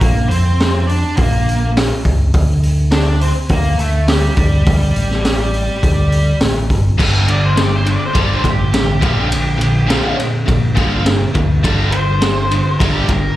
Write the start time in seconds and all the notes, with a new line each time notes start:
0.00 A#1 A#3 A#4, kick, open hi-hat
0.28 F2 C4 C5, open hi-hat
0.60 snare, open hi-hat
0.87 D4 D5, open hi-hat
1.16 A#1 A#3 A#4, kick, open hi-hat
1.49 open hi-hat
1.77 snare, open hi-hat
2.05 C#2, kick, open hi-hat
2.34 D2, kick, open hi-hat
2.63 open hi-hat
2.91 D4 D5, snare, open hi-hat
3.21 C4 C5, open hi-hat
3.49 D2 A#3 A#4, kick, open hi-hat
3.79 D2 A3 A4, open hi-hat
4.08 G3 G4, snare, open hi-hat
4.36 D2 G3 G4, kick, open hi-hat
4.66 D2, kick, open hi-hat
4.95 A1, open hi-hat
5.11 snare
5.25 snare, open hi-hat
5.54 open hi-hat
5.83 D2, kick, open hi-hat
6.12 open hi-hat
6.41 A1, snare, open hi-hat
6.70 G1, kick, open hi-hat
6.98 G1 G2 D3 G3, kick, crash
7.27 G2 D3 D5, ride
7.46 C5
7.56 G2 D3, snare, ride
7.61 D5
7.76 C5
7.85 G2 D3, ride
7.91 D5
8.06 C5
8.14 G1 G2 D3 G3, kick, ride
8.21 D5
8.35 C5
8.44 A1 G2 D3, kick, snare, ride
8.50 G4
8.73 G2 D3, snare, ride
9.01 A#1 A#2 D3 F3, kick, ride
9.29 A#2 D3, ride
9.58 A#2 D3, ride
9.87 A#2 D3 F3, snare, ride
10.17 A#2 D3, snare, ride
10.46 A#1 A#2 D3, kick, ride
10.75 G1 A#2 D3 F3, kick, ride
11.05 A#2 D3, snare, ride
11.34 D2 A#2 D3, kick, ride
11.63 G1 G2 D3 G3, kick, ride
11.91 G2 D3 C5, ride
12.22 G2 D3, snare, ride
12.51 G2 D3, ride
12.79 G1 G2 D3 G3 A#4, kick, ride
12.94 G4
13.09 G1 G2 D3 A#4, kick, snare, ride